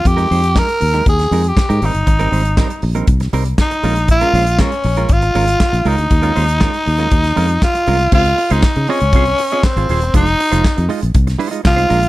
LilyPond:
<<
  \new Staff \with { instrumentName = "Clean electric guitar" } { \time 4/4 \key f \minor \tempo 4 = 119 r16 <aes ees' g' bes'>16 <aes ees' g' c''>16 r16 <aes ees' g' bes'>16 r8 <aes ees' g' bes'>16 r8 <aes ees' g' bes'>16 r8 <aes ees' g' bes'>16 <g c' ees' bes'>16 r16 | r16 <g c' ees' bes'>16 <g c' ees' c''>16 r16 <g c' ees' bes'>16 r8 <g c' ees' bes'>16 r8 <g c' ees' bes'>16 r8. <aes des' f' bes'>16 r16 | r16 <aes des' f' bes'>16 <aes des' f' c''>16 r16 <aes des' f' bes'>16 r8 <aes des' f' bes'>16 r8 <aes des' f' bes'>16 r8. <aes des' f' bes'>16 r16 | r16 <aes des' f' bes'>16 <aes des' f' c''>16 r16 <aes des' f' bes'>16 r8 <aes des' f' bes'>16 r8 <aes des' f' bes'>16 r8. <aes des' f' bes'>16 r16 |
<c' f' aes' c''>16 r8 <c' f' aes' c''>16 r8 <c' f' aes' ees''>16 r16 <c' f' aes' c''>16 r8 <c' f' aes' ees''>16 r16 <c' f' aes' c''>16 <c' f' aes' c''>16 r16 | <aes ees' f' c''>16 r8 <aes ees' f' c''>16 r8 <aes ees' f' ees''>16 r8. <aes ees' f' c''>16 <aes ees' f' ees''>16 r16 <aes ees' f' c''>16 <aes d' f' bes'>16 r16 | }
  \new Staff \with { instrumentName = "Tenor saxophone" } { \time 4/4 \key f \minor g'4 bes'4 aes'8. g'8. ees'8~ | ees'4. r4. ees'4 | f'4 des'4 f'4. ees'8~ | ees'2. f'4 |
f'8. ees'8. des'4. c'4 | ees'4. r4. f'4 | }
  \new Staff \with { instrumentName = "Fingered electric bass" } { \clef bass \time 4/4 \key f \minor f,8 f,8. r16 ees,8 ees,8 f,8 r16 aes,16 aes,,16 g,,16 | aes,,8 aes,,8. r16 bes,,8 c,8 c,8 r8 bes,,8~ | bes,,8 bes,,8. r16 bes,,8 aes,,8 aes,,8 r16 bes,,16 des,16 d,16 | ees,8 ees,8. r16 ees,8 ees,8 f,8 r8 c,8 |
des,8 r16 des,16 r16 des16 r16 des,16 c,8 r8. aes,,16 ees,,16 e,,16 | f,,8 r16 f,,16 r16 f,16 r16 bes,,16 c,8 r8 c,8 bes,,8 | }
  \new DrumStaff \with { instrumentName = "Drums" } \drummode { \time 4/4 <hh bd>16 hh16 hho16 hh16 <hc bd sn>16 hh16 hho16 hh16 <hh bd>16 <hh sn>16 hho16 hh16 <hc bd sn>16 hh16 hho16 hh16 | <hh bd>16 hh16 hho16 hh16 <hc bd sn>16 hh16 hho16 hh16 <hh bd>16 <hh sn>16 hho16 hh16 <hc bd sn>16 hh16 hho16 hh16 | <hh bd>16 hh16 hho16 hh16 <hc bd sn>16 hh16 hho16 hh16 <hh bd>16 hh16 hho16 hh16 <hc bd sn>16 hh16 hho16 hh16 | <hh bd>16 hh16 hho16 hh16 <hc bd sn>16 hh16 hho16 hh16 <hh bd>16 <hh sn>16 hho16 hh16 <hc bd sn>16 hh16 hho16 hh16 |
<cymc bd>16 hh16 hho16 hh16 <hc bd sn>16 hh16 hho16 hh16 <hh bd>16 hh16 hho16 hh16 <hc bd sn>16 hh16 hho16 hh16 | <hh bd>16 hh16 hho16 hh16 <hc bd sn>16 hh16 hho16 hh16 <hh bd>16 <hh sn>16 hho16 hh16 <hc bd sn>16 hh16 hho16 hh16 | }
>>